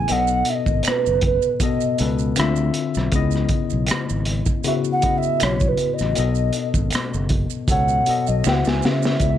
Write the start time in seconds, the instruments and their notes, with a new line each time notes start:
Already playing: tine electric piano C#3 B3 E4 G#4 F#5, ocarina G#5
0.08 fingered electric bass B1, tine electric piano B2 B3 A4, ocarina F#5, closed hi-hat, maracas
0.12 tine electric piano D#5
0.27 maracas
0.45 closed hi-hat, maracas
0.50 ocarina E5
0.54 ocarina D#5
0.66 fingered electric bass G#1, kick, maracas
0.83 finger snap, closed hi-hat, maracas
0.87 ocarina B4 C5, muted fingered electric bass stroke, cross-stick
1.06 fingered electric bass F#1, maracas
1.21 kick, closed hi-hat
1.26 ocarina B4
1.42 maracas
1.60 tine electric piano B2 B3 A4 D#5, ocarina D#5, kick, closed hi-hat, maracas
1.81 maracas
1.98 fingered electric bass C#2, tine electric piano B2 B3 A4 B4, closed hi-hat, maracas
2.19 maracas
2.36 fingered electric bass D2, tine electric piano D3 C4 F4 E5, finger snap, cross-stick, closed hi-hat, maracas
2.56 maracas
2.74 closed hi-hat, maracas
2.94 fingered electric bass B1, cross-stick, maracas
3.12 fingered electric bass C#2, tine electric piano C#3 B3 E4, kick, closed hi-hat, maracas
3.16 tine electric piano D#5
3.31 maracas
3.36 cross-stick
3.49 kick, closed hi-hat, maracas
3.70 fingered electric bass B1, maracas
3.87 finger snap, closed hi-hat, maracas
3.91 cross-stick
4.09 fingered electric bass G#1, maracas
4.25 closed hi-hat
4.46 kick, maracas
4.64 tine electric piano C#3 B3 E4 F#4, ocarina E5, closed hi-hat, maracas
4.84 maracas
4.92 ocarina F#5
5.02 tine electric piano C#3 B3 E4, kick, closed hi-hat, maracas
5.06 tine electric piano D#5
5.18 ocarina E5
5.23 maracas
5.40 fingered electric bass B1, ocarina C#5, finger snap, cross-stick, closed hi-hat, maracas
5.60 kick, maracas
5.68 ocarina B4
5.77 closed hi-hat, maracas
5.94 ocarina D#5
5.99 fingered electric bass A1, cross-stick, maracas
6.15 fingered electric bass B1, tine electric piano B2 B3 A4, closed hi-hat, maracas
6.20 tine electric piano D#5
6.35 maracas
6.53 closed hi-hat, maracas
6.74 fingered electric bass G#1, kick, maracas
6.91 finger snap, closed hi-hat, maracas
6.95 cross-stick
7.14 fingered electric bass F#1, maracas
7.29 kick, closed hi-hat
7.50 maracas
7.68 fingered electric bass C#2, tine electric piano B2 B3 A4, ocarina F#5, kick, closed hi-hat, maracas
7.72 tine electric piano C#5
7.88 maracas
8.06 tine electric piano B2 B3 A4, muted fingered electric bass stroke, closed hi-hat, maracas
8.10 tine electric piano D#5
8.27 fingered electric bass B1, ocarina D#5, maracas
8.44 fingered electric bass C#2, tine electric piano C#3 B3 E4 F#4 E5, ocarina G5, finger snap, snare, maracas
8.52 ocarina F#5
8.65 fingered electric bass C#2, ocarina G#5, snare, maracas
8.82 fingered electric bass C#3, ocarina F5, snare, maracas
8.89 ocarina E5
9.03 snare, maracas
9.20 fingered electric bass C#2, tine electric piano C#3 B3 E4, kick, closed hi-hat, maracas
9.24 tine electric piano D5
9.30 tine electric piano E5